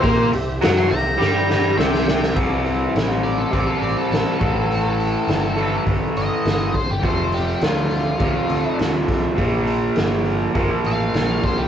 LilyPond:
<<
  \new Staff \with { instrumentName = "Lead electric guitar" } { \time 4/4 \key c \mixolydian \tempo 4 = 103 c''8 r8. c'''16 bes''4. g''8 g''8 | r4. d''16 a'16 d''16 a'16 d''16 a'16 a'4~ | a'2 r8 ees''4 c''16 g'16 | c''8 g'8 f'2 r4 |
r2 r8 f''4 c''16 g'16 | }
  \new Staff \with { instrumentName = "Tonewheel organ" } { \time 4/4 \key c \mixolydian <c' g' e''>1 | r1 | r1 | r1 |
r1 | }
  \new Staff \with { instrumentName = "Overdriven electric guitar" } { \clef bass \time 4/4 \key c \mixolydian <bes bes'>8 c8 <fis fis'>8 c8 <g g'>4 <c c'>4 | <c g c'>2 <c g c'>4. <a, e a>8~ | <a, e a>4. <a, e a>2 r8 | <f, c f>2 <f, c f>2 |
<bes, f bes>2 <bes, f bes>2 | }
  \new Staff \with { instrumentName = "Fingered electric bass" } { \clef bass \time 4/4 \key c \mixolydian bes,8 c,8 fis,8 c,8 g,4 c,4 | c,4 a,,4 a,,16 r16 a,,16 r16 a,,16 r16 a,,8~ | a,,4 g,,4 g,,16 r16 g,,16 r16 g,,8 r16 g,,16 | f,,4 d,4 d,16 r16 d,16 r16 d,8 r16 c,16 |
bes,,4 g,,4 g,,16 r16 a,,8 bes,,8 c,8 | }
  \new DrumStaff \with { instrumentName = "Drums" } \drummode { \time 4/4 <hho bd>8 hho8 <hho sn>8 hho8 sn8 sn8 sn16 sn16 sn16 sn16 | <cymc bd>8 hho8 <hho sn>8 hho8 <hho bd>8 hho8 <hho sn>8 <hho bd>8 | hho8 hho8 <hho sn>8 hho8 <hho bd>8 hho8 <hho sn>8 <hho bd>8 | <hho bd>8 hho8 <hho sn>8 hho8 <hho bd>8 hho8 <hho sn>8 <hho bd sn>8 |
<hho bd>8 hho8 <hho sn>8 hho8 <hho bd>8 hho8 <hho sn>8 <hho bd sn>8 | }
>>